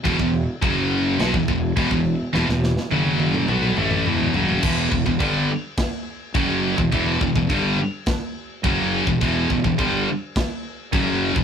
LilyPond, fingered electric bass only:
\new Staff \with { instrumentName = "Fingered electric bass" } { \clef bass \time 4/4 \key e \minor \tempo 4 = 105 e,,16 e,,8 r16 fis,,4 b,,16 e,,16 e,,8 e,,16 e,,8 r16 | e,,16 e,,8 r16 fis,,4 b,,8 a,,8 e,,8 fis,,8 | e,,8 e,,16 e,,16 g,,8 r4. fis,,8. e,,16 | e,,8 e,,16 e,,16 g,,8 r4. fis,,8. e,,16 |
e,,8 e,,16 e,,16 g,,8 r4. fis,,8. e,,16 | }